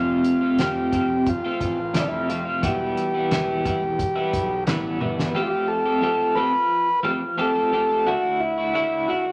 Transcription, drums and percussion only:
0.24 closed hi-hat
0.59 snare, closed hi-hat
0.93 kick, closed hi-hat
1.26 kick, closed hi-hat
1.61 kick, closed hi-hat
1.94 snare, closed hi-hat
2.30 closed hi-hat
2.63 kick, closed hi-hat
2.97 closed hi-hat
3.31 snare, closed hi-hat
3.65 kick, closed hi-hat
3.99 kick, closed hi-hat
4.33 kick, closed hi-hat
4.67 snare, closed hi-hat
5.01 high tom
5.19 snare

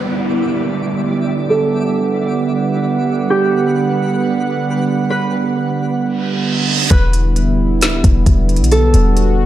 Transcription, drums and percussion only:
6.91 kick, closed hi-hat
7.13 closed hi-hat
7.36 closed hi-hat
7.81 snare, closed hi-hat
8.04 kick, closed hi-hat
8.26 kick, closed hi-hat
8.49 closed hi-hat
8.56 closed hi-hat
8.64 closed hi-hat
8.71 closed hi-hat
8.94 closed hi-hat
9.17 closed hi-hat

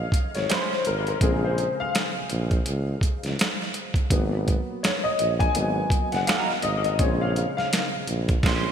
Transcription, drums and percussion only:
0.12 kick, closed hi-hat
0.35 snare, closed hi-hat
0.50 snare, closed hi-hat
0.73 snare
0.85 closed hi-hat
1.07 closed hi-hat
1.21 kick, closed hi-hat
1.58 closed hi-hat
1.95 snare, closed hi-hat
2.30 closed hi-hat
2.51 kick, closed hi-hat
2.66 closed hi-hat
3.01 kick, closed hi-hat
3.23 snare, closed hi-hat
3.39 snare, closed hi-hat
3.62 snare
3.74 closed hi-hat
3.94 kick, closed hi-hat
4.10 kick, closed hi-hat
4.48 kick, closed hi-hat
4.84 snare, closed hi-hat
5.19 closed hi-hat
5.40 kick, closed hi-hat
5.55 closed hi-hat
5.90 kick, closed hi-hat
6.12 snare, closed hi-hat
6.27 snare, closed hi-hat
6.50 snare
6.62 closed hi-hat
6.84 closed hi-hat
6.99 kick, closed hi-hat
7.36 closed hi-hat
7.58 snare
7.73 snare, closed hi-hat
8.07 closed hi-hat
8.29 kick, closed hi-hat
8.43 kick, snare, crash

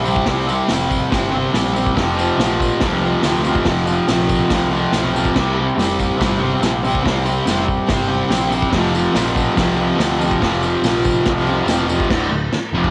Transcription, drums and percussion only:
0.05 tambourine
0.16 kick
0.26 kick, snare, open hi-hat
0.49 tambourine
0.60 tambourine
0.68 snare, open hi-hat, tambourine
0.91 kick, tambourine
1.12 kick, snare, open hi-hat, tambourine
1.54 snare, open hi-hat, tambourine
1.76 tambourine
1.86 kick, tambourine
1.97 kick, snare, open hi-hat
2.19 tambourine
2.29 tambourine
2.39 snare, open hi-hat, tambourine
2.60 kick, tambourine
2.80 kick, snare, open hi-hat, tambourine
3.23 snare, open hi-hat, tambourine
3.45 tambourine
3.55 kick, tambourine
3.65 kick, snare, open hi-hat, tambourine
3.77 tambourine
3.87 tambourine
4.08 snare, open hi-hat, tambourine
4.29 kick, tambourine
4.41 tambourine
4.50 kick, snare, open hi-hat, tambourine
4.62 tambourine
4.73 tambourine
4.92 snare, open hi-hat, tambourine
5.05 tambourine
5.16 tambourine
5.25 kick, tambourine
5.36 kick, snare, crash
5.69 tambourine
5.79 snare, open hi-hat, tambourine
6.00 kick, tambourine
6.21 kick, snare, open hi-hat, tambourine
6.63 snare, open hi-hat, tambourine
6.84 tambourine
6.94 kick, tambourine
7.06 kick, snare, open hi-hat
7.26 tambourine
7.47 snare, open hi-hat, tambourine
7.68 kick, tambourine
7.88 kick, snare, open hi-hat, tambourine
8.31 snare, open hi-hat, tambourine
8.52 tambourine
8.62 kick, tambourine
8.72 kick, snare, open hi-hat
8.95 tambourine
9.05 tambourine
9.15 snare, open hi-hat, tambourine
9.36 kick, tambourine
9.57 kick, snare, open hi-hat, tambourine
10.00 snare, open hi-hat, tambourine
10.21 tambourine
10.31 kick, tambourine
10.42 kick, snare, open hi-hat
10.53 tambourine
10.63 tambourine
10.84 snare, open hi-hat, tambourine
11.04 kick, tambourine
11.25 kick, snare, open hi-hat, tambourine
11.47 tambourine
11.68 snare, open hi-hat, tambourine
11.78 tambourine
11.89 tambourine
12.00 kick
12.11 kick, snare, crash
12.52 snare, crash
12.84 kick

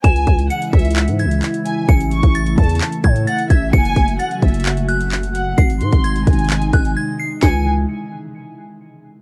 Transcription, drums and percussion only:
0.04 kick, closed hi-hat
0.16 closed hi-hat
0.27 kick, closed hi-hat
0.39 closed hi-hat
0.50 closed hi-hat
0.62 closed hi-hat
0.73 kick, closed hi-hat
0.79 closed hi-hat
0.85 closed hi-hat
0.91 closed hi-hat
0.96 clap, closed hi-hat
1.08 closed hi-hat
1.19 closed hi-hat
1.31 closed hi-hat
1.42 clap, closed hi-hat
1.54 closed hi-hat
1.66 closed hi-hat
1.89 kick, closed hi-hat
2.00 closed hi-hat
2.11 closed hi-hat
2.23 kick, closed hi-hat
2.35 closed hi-hat
2.46 closed hi-hat
2.58 kick, closed hi-hat
2.64 closed hi-hat
2.69 closed hi-hat
2.75 closed hi-hat
2.81 clap, closed hi-hat
2.92 closed hi-hat
3.04 kick, closed hi-hat
3.16 closed hi-hat
3.27 closed hi-hat
3.39 closed hi-hat
3.50 kick, closed hi-hat
3.73 kick, closed hi-hat
3.85 closed hi-hat
3.96 kick, closed hi-hat
4.08 closed hi-hat
4.20 closed hi-hat
4.31 closed hi-hat
4.42 kick, closed hi-hat
4.48 closed hi-hat
4.54 closed hi-hat
4.60 closed hi-hat
4.66 clap, closed hi-hat
4.77 closed hi-hat
4.89 closed hi-hat
5.01 closed hi-hat
5.12 clap, closed hi-hat
5.23 closed hi-hat
5.35 closed hi-hat
5.58 kick, closed hi-hat
5.70 closed hi-hat
5.81 closed hi-hat
5.92 kick, closed hi-hat
6.04 closed hi-hat
6.16 closed hi-hat
6.27 kick, closed hi-hat, open hi-hat
6.33 closed hi-hat
6.39 closed hi-hat
6.44 closed hi-hat
6.50 clap, closed hi-hat
6.62 closed hi-hat
6.73 kick, closed hi-hat
6.85 closed hi-hat
7.42 kick, snare

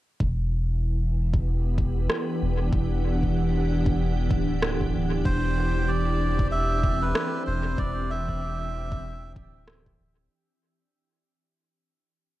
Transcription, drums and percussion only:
0.20 kick
1.34 kick
1.78 kick
2.10 cross-stick
2.73 kick
3.23 kick
3.86 kick
4.31 kick
4.62 cross-stick
4.81 kick
5.25 kick
6.39 kick
6.83 kick
7.15 cross-stick
7.78 kick
8.29 kick
8.92 kick
9.36 kick
9.67 cross-stick
9.86 kick

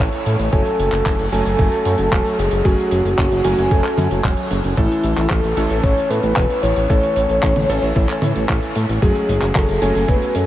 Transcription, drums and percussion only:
0.00 kick, clap
0.12 closed hi-hat
0.26 closed hi-hat
0.39 closed hi-hat
0.53 kick, closed hi-hat
0.66 closed hi-hat
0.79 closed hi-hat
0.92 clap, closed hi-hat
1.06 kick, clap, closed hi-hat
1.19 closed hi-hat
1.33 closed hi-hat
1.45 closed hi-hat
1.59 kick, closed hi-hat
1.72 closed hi-hat
1.85 closed hi-hat
1.98 closed hi-hat
2.12 kick, clap, closed hi-hat
2.25 closed hi-hat
2.39 closed hi-hat
2.51 closed hi-hat
2.65 kick, closed hi-hat
2.78 closed hi-hat
2.91 closed hi-hat
3.06 closed hi-hat
3.18 kick, clap, closed hi-hat
3.31 closed hi-hat
3.44 closed hi-hat
3.58 closed hi-hat
3.71 kick, closed hi-hat
3.84 clap, closed hi-hat
3.98 closed hi-hat, high tom
4.11 closed hi-hat
4.24 kick, clap, closed hi-hat
4.37 closed hi-hat
4.51 closed hi-hat
4.64 closed hi-hat
4.77 kick, closed hi-hat
4.92 closed hi-hat
5.03 closed hi-hat
5.17 clap, closed hi-hat
5.30 kick, clap, closed hi-hat
5.44 closed hi-hat
5.57 closed hi-hat
5.70 closed hi-hat
5.84 kick, closed hi-hat
5.98 closed hi-hat
6.10 closed hi-hat
6.23 closed hi-hat
6.36 kick, clap, closed hi-hat
6.50 closed hi-hat
6.63 closed hi-hat
6.76 closed hi-hat
6.90 kick, closed hi-hat
7.03 closed hi-hat
7.16 closed hi-hat
7.29 closed hi-hat
7.43 kick, clap, closed hi-hat
7.56 closed hi-hat, high tom
7.70 closed hi-hat
7.83 closed hi-hat
7.96 kick, closed hi-hat
8.09 clap, closed hi-hat
8.22 closed hi-hat, high tom
8.36 closed hi-hat
8.49 kick, clap, closed hi-hat
8.62 closed hi-hat
8.75 closed hi-hat
8.89 closed hi-hat
9.02 kick, closed hi-hat
9.15 closed hi-hat
9.29 closed hi-hat
9.42 clap, closed hi-hat
9.55 kick, clap, closed hi-hat
9.69 closed hi-hat
9.82 closed hi-hat
9.95 closed hi-hat
10.08 kick, closed hi-hat
10.22 closed hi-hat
10.35 closed hi-hat

